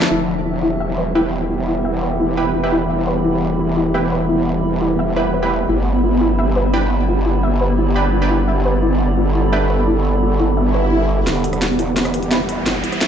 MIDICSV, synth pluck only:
0, 0, Header, 1, 2, 480
1, 0, Start_track
1, 0, Key_signature, 1, "minor"
1, 0, Tempo, 348837
1, 146, Time_signature, 4, 2, 24, 8
1, 17991, End_track
2, 0, Start_track
2, 0, Title_t, "Synth pluck"
2, 0, Program_c, 0, 84
2, 146, Note_on_c, 0, 64, 96
2, 204, Note_off_c, 0, 64, 0
2, 627, Note_on_c, 0, 64, 75
2, 723, Note_off_c, 0, 64, 0
2, 866, Note_on_c, 0, 64, 94
2, 962, Note_off_c, 0, 64, 0
2, 1107, Note_on_c, 0, 76, 105
2, 1202, Note_off_c, 0, 76, 0
2, 1346, Note_on_c, 0, 71, 100
2, 1404, Note_off_c, 0, 71, 0
2, 1586, Note_on_c, 0, 64, 102
2, 1643, Note_off_c, 0, 64, 0
2, 2065, Note_on_c, 0, 64, 78
2, 2162, Note_off_c, 0, 64, 0
2, 2305, Note_on_c, 0, 64, 94
2, 2402, Note_off_c, 0, 64, 0
2, 2545, Note_on_c, 0, 76, 100
2, 2642, Note_off_c, 0, 76, 0
2, 2785, Note_on_c, 0, 71, 96
2, 2843, Note_off_c, 0, 71, 0
2, 3026, Note_on_c, 0, 64, 102
2, 3084, Note_off_c, 0, 64, 0
2, 3506, Note_on_c, 0, 64, 77
2, 3602, Note_off_c, 0, 64, 0
2, 3745, Note_on_c, 0, 64, 98
2, 3842, Note_off_c, 0, 64, 0
2, 3985, Note_on_c, 0, 76, 95
2, 4082, Note_off_c, 0, 76, 0
2, 4226, Note_on_c, 0, 71, 96
2, 4283, Note_off_c, 0, 71, 0
2, 4466, Note_on_c, 0, 64, 102
2, 4523, Note_off_c, 0, 64, 0
2, 4945, Note_on_c, 0, 64, 88
2, 5042, Note_off_c, 0, 64, 0
2, 5185, Note_on_c, 0, 64, 97
2, 5282, Note_off_c, 0, 64, 0
2, 5425, Note_on_c, 0, 76, 100
2, 5522, Note_off_c, 0, 76, 0
2, 5665, Note_on_c, 0, 71, 99
2, 5723, Note_off_c, 0, 71, 0
2, 5904, Note_on_c, 0, 64, 99
2, 5963, Note_off_c, 0, 64, 0
2, 6384, Note_on_c, 0, 64, 75
2, 6481, Note_off_c, 0, 64, 0
2, 6624, Note_on_c, 0, 64, 102
2, 6721, Note_off_c, 0, 64, 0
2, 6864, Note_on_c, 0, 76, 97
2, 6961, Note_off_c, 0, 76, 0
2, 7104, Note_on_c, 0, 71, 103
2, 7163, Note_off_c, 0, 71, 0
2, 7345, Note_on_c, 0, 71, 99
2, 7490, Note_off_c, 0, 71, 0
2, 7826, Note_on_c, 0, 64, 93
2, 7884, Note_off_c, 0, 64, 0
2, 8307, Note_on_c, 0, 65, 75
2, 8403, Note_off_c, 0, 65, 0
2, 8546, Note_on_c, 0, 64, 104
2, 8642, Note_off_c, 0, 64, 0
2, 8786, Note_on_c, 0, 76, 103
2, 8882, Note_off_c, 0, 76, 0
2, 9027, Note_on_c, 0, 71, 100
2, 9084, Note_off_c, 0, 71, 0
2, 9267, Note_on_c, 0, 64, 103
2, 9324, Note_off_c, 0, 64, 0
2, 9747, Note_on_c, 0, 65, 82
2, 9843, Note_off_c, 0, 65, 0
2, 9987, Note_on_c, 0, 64, 102
2, 10083, Note_off_c, 0, 64, 0
2, 10227, Note_on_c, 0, 76, 102
2, 10323, Note_off_c, 0, 76, 0
2, 10467, Note_on_c, 0, 71, 101
2, 10524, Note_off_c, 0, 71, 0
2, 10707, Note_on_c, 0, 64, 101
2, 10764, Note_off_c, 0, 64, 0
2, 11187, Note_on_c, 0, 65, 82
2, 11283, Note_off_c, 0, 65, 0
2, 11426, Note_on_c, 0, 64, 97
2, 11522, Note_off_c, 0, 64, 0
2, 11666, Note_on_c, 0, 76, 105
2, 11762, Note_off_c, 0, 76, 0
2, 11906, Note_on_c, 0, 71, 100
2, 11964, Note_off_c, 0, 71, 0
2, 12146, Note_on_c, 0, 64, 104
2, 12203, Note_off_c, 0, 64, 0
2, 12626, Note_on_c, 0, 65, 87
2, 12722, Note_off_c, 0, 65, 0
2, 12865, Note_on_c, 0, 64, 97
2, 12962, Note_off_c, 0, 64, 0
2, 13105, Note_on_c, 0, 76, 108
2, 13202, Note_off_c, 0, 76, 0
2, 13345, Note_on_c, 0, 71, 103
2, 13403, Note_off_c, 0, 71, 0
2, 13586, Note_on_c, 0, 64, 97
2, 13644, Note_off_c, 0, 64, 0
2, 14066, Note_on_c, 0, 65, 77
2, 14162, Note_off_c, 0, 65, 0
2, 14306, Note_on_c, 0, 64, 98
2, 14402, Note_off_c, 0, 64, 0
2, 14546, Note_on_c, 0, 76, 102
2, 14642, Note_off_c, 0, 76, 0
2, 14786, Note_on_c, 0, 71, 104
2, 14882, Note_off_c, 0, 71, 0
2, 15026, Note_on_c, 0, 64, 106
2, 15122, Note_off_c, 0, 64, 0
2, 15505, Note_on_c, 0, 64, 104
2, 15563, Note_off_c, 0, 64, 0
2, 15985, Note_on_c, 0, 64, 78
2, 16082, Note_off_c, 0, 64, 0
2, 16224, Note_on_c, 0, 64, 103
2, 16321, Note_off_c, 0, 64, 0
2, 16465, Note_on_c, 0, 76, 109
2, 16561, Note_off_c, 0, 76, 0
2, 16704, Note_on_c, 0, 71, 105
2, 16763, Note_off_c, 0, 71, 0
2, 16945, Note_on_c, 0, 64, 107
2, 17003, Note_off_c, 0, 64, 0
2, 17425, Note_on_c, 0, 64, 81
2, 17522, Note_off_c, 0, 64, 0
2, 17664, Note_on_c, 0, 64, 95
2, 17761, Note_off_c, 0, 64, 0
2, 17905, Note_on_c, 0, 76, 102
2, 17991, Note_off_c, 0, 76, 0
2, 17991, End_track
0, 0, End_of_file